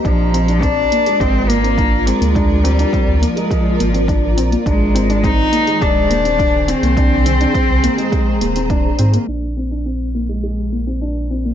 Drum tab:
HH |x-xxx-xxx-xxx-xx|x-xxx-xxx-xxx-xx|x-xxx-xxx-xxx-xx|x-xxx-xxx-xxx-xx|
BD |o---o---o---o---|o---o---o---o---|o---o---o---o---|o---o---o---o---|

HH |----------------|
BD |----------------|